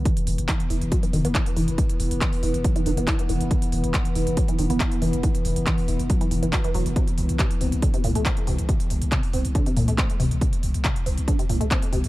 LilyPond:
<<
  \new Staff \with { instrumentName = "Synth drone" } { \clef bass \time 4/4 \key c \lydian \tempo 4 = 139 <e b>1~ | <e b>1~ | <e b>1~ | <e b>1~ |
<e b>1~ | <e b>1~ | <e b>1 | }
  \new Staff \with { instrumentName = "Synth arpeggio sound" } { \clef bass \time 4/4 \key c \lydian e16 r8. e16 r16 e'16 r16 fis16 e16 dis16 b16 e'16 r16 e16 r16 | e16 r8. e16 r16 e'16 r16 fis16 e16 dis16 b16 e'16 r16 e16 r16 | e16 r8. e16 r16 e'16 r16 fis16 e16 dis16 b16 e'16 r16 e16 r16 | e16 r8. e16 r16 e'16 r16 fis16 e16 e16 e16 fis16 e16 fis16 r16 |
c16 r8. c16 r16 c'16 r16 d16 c16 ais,16 a16 c'16 r16 c16 r16 | c16 r8. c16 r16 c'16 r16 d16 c16 ais,16 a16 c'16 r16 c16 r16 | c16 r8. c16 r16 c'16 r16 d16 c16 ais,16 a16 c'16 r16 c16 r16 | }
  \new Staff \with { instrumentName = "808-style bass" } { \clef bass \time 4/4 \key c \lydian r8 e,,16 e,,16 r8 e,,16 e,,16 r8 e,,16 e,,16 r8 e,,16 e,,16 | r8 e,,16 e,,16 r8 e,,16 e,,16 r8 e,,16 e,,16 r8 e,,16 e,,16 | r8 e,,16 e,,16 r8 e,,16 e,,16 r8 e,,16 e,,16 r8 e,,16 e,,16 | r8 e,,16 e,,16 r8 e,,16 e,,16 r8 e,,16 e,,16 r8 e,,16 e,,16 |
r8 c,16 c,16 r8 c,16 c,16 r8 c,16 c,16 r8 c,16 c,16 | r8 c,16 c,16 r8 c,16 c,16 r8 c,16 c,16 r8 c,16 c,16 | r8 c,16 c,16 r8 c,16 c,16 r8 c,16 c,16 r8 c,16 c,16 | }
  \new DrumStaff \with { instrumentName = "Drums" } \drummode { \time 4/4 <hh bd>16 hh16 hho16 hh16 <hc hh bd>16 hh16 hho16 hh16 <hh bd>16 hh16 hho16 hh16 <hc hh bd>16 hh16 hho16 hh16 | <hh bd>16 hh16 hho16 hh16 <hc hh bd>16 hho16 hho16 hh16 <hh bd>16 hh16 hho16 hh16 <hc hh bd>16 hh16 hho16 hh16 | <hh bd>16 hh16 hho16 hh16 <hc hh bd>16 hh16 hho16 hh16 <hh bd>16 hh16 hho16 hh16 <hc hh bd>16 hh16 hho16 hh16 | <hh bd>16 hh16 hho16 hh16 <hc hh bd>16 hho16 hho16 hh16 <hh bd>16 hh16 hho16 hh16 <hc hh bd>16 hh16 hho16 hh16 |
<hh bd>16 hh16 hho16 hh16 <hc hh bd>16 hh16 hho16 hh16 <hh bd>16 hh16 hho16 hh16 <hc hh bd>16 hh16 hho16 hh16 | <hh bd>16 hh16 hho16 hh16 <hc hh bd>16 hho16 hho16 hh16 <hh bd>16 hh16 hho16 hh16 <hc hh bd>16 hh16 hho16 hh16 | <hh bd>16 hh16 hho16 hh16 <hc hh bd>16 hh16 hho16 hh16 <hh bd>16 hh16 hho16 hh16 <hc hh bd>16 hh16 hho16 hh16 | }
>>